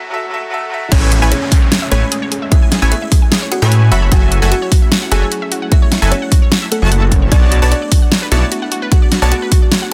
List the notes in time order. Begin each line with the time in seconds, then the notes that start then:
Already playing: F#3 F#4 A4 E5
0.10 F#3 F#4 A4 E5, swell
0.30 F#3 F#4 A4
0.34 E5
0.50 F#3 F#4 A4
0.54 E5
0.70 F#3 F#4 A4 E5
0.92 A1 G#3 A3 C#4 E4 G#4 B4 C#5 G#5, kick, closed hi-hat, crash, downlifter
1.02 C#5
1.12 G#4, closed hi-hat
1.22 A1 A3 E4 B4 C#5 E5 G#5
1.32 C#4 G#4 C#5, closed hi-hat
1.42 G#5
1.52 G#4, kick, open hi-hat
1.62 C#5
1.72 G#4, snare, closed hi-hat
1.82 E5
1.92 A1 A3 C#4 E4 G#4 B4 C#5 G#5, closed hi-hat
2.02 G#5
2.12 G#4, closed hi-hat
2.22 C#5
2.32 G#4, closed hi-hat
2.42 E5
2.52 E4 G#4 E5, kick, closed hi-hat
2.62 G#5
2.72 G#4, snare, closed hi-hat
2.82 A1 A3 E4 B4 C#5 G#5
2.92 E4 G#4 E5, closed hi-hat
3.02 E5
3.12 G#4, kick, open hi-hat
3.22 G#5
3.32 G#4, snare, closed hi-hat
3.42 C#5
3.52 F#4 G#4 F#5, closed hi-hat
3.62 A2 A3 E4 B4 C#5 E5 G#5
3.72 G#4, closed hi-hat
3.82 G#5
3.92 F#1 F#3 A3 E4 F#4 A4 E5 B5, closed hi-hat
4.02 C#5
4.12 F#1 F#3 F#4 A4 E5 F#5 G#5, kick, closed hi-hat
4.22 E5
4.32 F#4, closed hi-hat
4.42 F#1 F#3 F#4 A4 E5 F#5 G#5
4.52 F#4 F#5, closed hi-hat
4.62 C#5
4.72 F#4, kick, open hi-hat
4.82 E5
4.92 F#4, snare, closed hi-hat
5.02 F#5
5.12 F#1 F#3 F#4 G#4 A4 E5 G#5, closed hi-hat
5.22 C#5
5.32 F#4, closed hi-hat
5.42 E5
5.52 F#4, closed hi-hat
5.62 F#5
5.72 E4 F#4 E5, kick, closed hi-hat
5.82 C#5
5.92 F#4, snare, closed hi-hat
6.02 F#1 F#3 F#4 A4 E5 G#5
6.12 C#4 F#4 C#5, closed hi-hat
6.22 F#5
6.32 F#4, kick, open hi-hat
6.42 C#5
6.52 F#4, snare, closed hi-hat
6.62 E5
6.72 A3 A4 F#5, closed hi-hat
6.82 F#1 F#3 F#4 A4 E5 A5 C#6
6.92 F#5, closed hi-hat
7.02 F#4
7.12 C#5, kick, closed hi-hat
7.22 C#5
7.32 B1 A3 B3 D4 F#4 C#5 D5 A5, kick, closed hi-hat
7.42 F#5
7.52 F#4, closed hi-hat
7.62 B1 B3 F#4 B4 C#5 D5 A5
7.72 D4 F#4 D5, closed hi-hat
7.82 D5
7.92 F#4, kick, open hi-hat
8.02 F#5
8.12 F#4, snare, closed hi-hat
8.22 B4
8.32 B1 B3 E4 F#4 C#5 D5 E5 A5, closed hi-hat
8.42 D5
8.52 F#4, closed hi-hat
8.62 F#5
8.72 F#4, closed hi-hat
8.82 B4
8.92 F#4 F#5, kick, closed hi-hat
9.02 D5
9.12 F#4, snare, closed hi-hat
9.22 B1 B3 F#4 C#5 D5 F#5 A5
9.32 F#4 F#5, closed hi-hat
9.42 B4
9.52 F#4, kick, open hi-hat
9.62 D5
9.72 F#4, snare, closed hi-hat
9.82 F#5